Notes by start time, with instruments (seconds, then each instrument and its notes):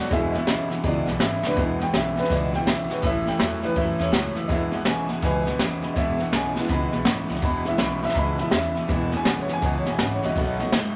Already playing: steel-string acoustic guitar F#4
0.00 clean electric guitar F#3, steel-string acoustic guitar A3 B3, upright piano F#4 D5
0.05 snare
0.10 upright bass E1, steel-string acoustic guitar E2 B2 E3 G#3 B3 E4, clean electric guitar E2 B2, upright piano G#3 B3 E4 G#4 E5, kick, snare
0.31 clean electric guitar E2 B2, steel-string acoustic guitar G#3 B3 E4, upright piano D#5, snare
0.36 steel-string acoustic guitar E3, upright piano E5
0.47 upright bass B1, clean electric guitar E2 C#3, steel-string acoustic guitar E3 G#3 B3 E4, snare, hi-hat pedal
0.70 clean electric guitar E2 B2, steel-string acoustic guitar E3 G#3 B3 E4, snare
0.83 upright bass C#2, steel-string acoustic guitar E2 B2 E3 G#3 B3 E4, clean electric guitar E2 B2, upright piano G#3 B3 E4 D5, kick, snare
1.05 upright bass B1, clean electric guitar E2 B2, steel-string acoustic guitar E3 G#3 B3 E4, snare
1.19 upright bass G#1, clean electric guitar E2 C#3, steel-string acoustic guitar E3 G#3 B3 E4, upright piano E5, snare, hi-hat pedal
1.42 upright bass C#2, clean electric guitar E2 B2, steel-string acoustic guitar E3 G#3 B3 E4, snare
1.46 upright piano D4 B4
1.55 upright bass E1, steel-string acoustic guitar E2 B2 E3 G#3 B3 E4, clean electric guitar E2 B2, upright piano G#3 B3 E4, kick, snare
1.78 clean electric guitar E2 B2, steel-string acoustic guitar E3 G#3 B3 E4, upright piano F#5, snare
1.83 upright piano G5
1.92 upright bass B1, clean electric guitar E2 C#3, steel-string acoustic guitar E3 G#3 B3 E4, snare, hi-hat pedal
1.97 upright piano E5
2.16 clean electric guitar E2 B2, steel-string acoustic guitar E3 G#3 B3 E4, snare
2.20 upright piano B4
2.24 snare
2.29 upright bass C#2, clean electric guitar E2 B2, steel-string acoustic guitar E2 B2 E3 G#3 B3 E4, upright piano D5, kick, snare
2.51 clean electric guitar E2 B2, upright piano G#3 B3 E4 F#5, steel-string acoustic guitar G#3 B3 E4, snare
2.55 steel-string acoustic guitar E3, upright piano G5
2.66 upright bass B1, clean electric guitar E2 C#3, steel-string acoustic guitar E3 G#3 B3 E4, upright piano E5, snare, hi-hat pedal
2.89 clean electric guitar E2 B2, steel-string acoustic guitar E3 G#3 B3 E4, snare
2.93 upright piano B4
3.02 upright bass A1, clean electric guitar A2 E3, steel-string acoustic guitar A2 E3 A3 C#4 E4, upright piano A3 C#4 E4, kick, snare
3.06 upright piano E5
3.24 clean electric guitar A2 E3, steel-string acoustic guitar A3 C#4 E4, upright piano G5, snare
3.38 upright bass E2, clean electric guitar A2 F#3, steel-string acoustic guitar E3 A3 C#4 E4, upright piano E5, snare, hi-hat pedal
3.61 clean electric guitar A2 E3, steel-string acoustic guitar A3 C#4 E4, snare
3.65 upright piano B4
3.75 upright bass F#2, steel-string acoustic guitar A2 E3 A3 C#4 E4, clean electric guitar A2 E3, upright piano E5, kick, snare
3.98 upright bass E2, clean electric guitar A2 E3, upright piano A3 C#4 E4 C#5, steel-string acoustic guitar A3 C#4 E4, snare
4.11 upright bass C#2, clean electric guitar A2 F#3, steel-string acoustic guitar E3 A3 C#4 E4, snare, hi-hat pedal
4.34 upright bass F#1, clean electric guitar A2 E3, steel-string acoustic guitar A3 C#4 E4, snare
4.47 upright bass E1, steel-string acoustic guitar E2 B2 E3 G#3 B3 E4, clean electric guitar E2 B2, upright piano G#3 B3 E4 D#5, kick, snare
4.52 upright piano E5
4.70 clean electric guitar E2 B2, steel-string acoustic guitar E3 G#3 B3 E4, snare
4.75 upright piano F#5
4.84 upright bass B1, clean electric guitar E2 C#3, steel-string acoustic guitar E3 G#3 B3 E4, snare, hi-hat pedal
4.88 upright piano G#5
5.08 clean electric guitar E2 B2, steel-string acoustic guitar E3 G#3 B3 E4, snare
5.21 upright bass C#2, steel-string acoustic guitar E2 B2 E3 G#3 B3 E4, clean electric guitar E2 B2, upright piano B4 G#5, kick, snare
5.44 clean electric guitar E2 B2, steel-string acoustic guitar E3 G#3 B3 E4, snare
5.58 upright bass E2, clean electric guitar E2 C#3, steel-string acoustic guitar E3 G#3 B3 E4, snare, hi-hat pedal
5.82 clean electric guitar E2 B2, steel-string acoustic guitar E3 G#3 B3 E4, snare
5.94 upright bass E1, steel-string acoustic guitar E2 B2 E3 G#3 B3 E4, clean electric guitar E2 B2, upright piano D#5, kick, snare
5.98 upright piano E5
6.18 clean electric guitar E2 B2, steel-string acoustic guitar E3 G#3 B3 E4, upright piano F#5, snare
6.31 upright bass B1, clean electric guitar E2 C#3, steel-string acoustic guitar E3 G#3 B3 E4, snare, hi-hat pedal
6.35 upright piano G#5
6.56 clean electric guitar E2 B2, steel-string acoustic guitar E3 G#3 B3 E4, upright piano G#3 B3 E4, snare
6.62 snare
6.68 upright bass C#2, steel-string acoustic guitar E2 B2 E3 G#3 B3 E4, clean electric guitar E2 B2, upright piano B5, kick, snare
6.92 upright bass B1, clean electric guitar E2 B2, steel-string acoustic guitar E3 G#3 B3 E4, snare
7.05 upright bass G#1, clean electric guitar E2 C#3, steel-string acoustic guitar E3 G#3 B3 E4, snare, hi-hat pedal
7.28 upright bass C#2, clean electric guitar E2 B2, steel-string acoustic guitar E3 G#3 B3 E4, snare
7.35 snare
7.41 upright bass E1, steel-string acoustic guitar E2 B2 E3 G#3 B3 E4, clean electric guitar E2 B2, upright piano B5, kick, snare
7.64 clean electric guitar E2 B2, steel-string acoustic guitar E3 G#3 B3 E4, upright piano G#3 B3 E4, snare
7.68 upright piano E5
7.78 upright bass B1, clean electric guitar E2 C#3, steel-string acoustic guitar E3 G#3 B3 E4, snare, hi-hat pedal
7.83 upright piano B5
8.02 clean electric guitar E2 B2, steel-string acoustic guitar E3 G#3 B3 E4, upright piano E5, snare
8.09 snare
8.14 upright bass C#2, steel-string acoustic guitar E2 B2 E3 G#3 B3 E4, clean electric guitar E2 B2, upright piano A#5, kick, snare
8.18 upright piano B5
8.38 clean electric guitar E2 B2, steel-string acoustic guitar E3 G#3 B3 E4, upright piano G#3 B3 E4 E5, snare
8.51 upright bass E2, clean electric guitar E2 C#3, steel-string acoustic guitar E3 G#3 B3 E4, upright piano E5, snare, hi-hat pedal
8.75 clean electric guitar E2 B2, steel-string acoustic guitar E3 G#3 B3 E4, snare
8.88 upright bass E1, steel-string acoustic guitar E2 B2 E3 G#3 B3 E4, clean electric guitar E2 B2, upright piano G#3 B3 E4, kick, snare
9.11 clean electric guitar E2 B2, steel-string acoustic guitar E3 G#3 B3 E4, snare
9.17 upright piano G#5
9.25 upright bass B1, clean electric guitar E2 C#3, steel-string acoustic guitar E3 G#3 B3 E4, upright piano F#5, snare, hi-hat pedal
9.41 upright piano C#5
9.48 clean electric guitar E2 B2, steel-string acoustic guitar E3 G#3 B3 E4, snare
9.53 upright piano G#5
9.62 upright bass C#2, steel-string acoustic guitar E2 B2 E3 G#3 B3 E4, clean electric guitar E2 B2, kick, snare
9.66 upright piano F#5
9.78 upright piano C#5
9.85 upright bass B1, clean electric guitar E2 B2, steel-string acoustic guitar E3 G#3 B3 E4, snare
9.90 upright piano G#5
9.98 upright bass G#1, clean electric guitar E2 C#3, steel-string acoustic guitar E3 G#3 B3 E4, snare, hi-hat pedal
10.02 upright piano F#5
10.14 upright piano C#5
10.22 upright bass C#2, clean electric guitar E2 B2, steel-string acoustic guitar E3 G#3 B3 E4, upright piano F#4 D#5, snare
10.36 upright bass B1, steel-string acoustic guitar B2 D#3 A3 B3 F#4, clean electric guitar B2 F#3, kick, snare
10.59 clean electric guitar B2 F#3, upright piano A3 C#4 D#4, steel-string acoustic guitar A3 B3 F#4, snare
10.72 upright bass F#2, clean electric guitar B2 G#3, steel-string acoustic guitar D#3 A3 B3, snare, hi-hat pedal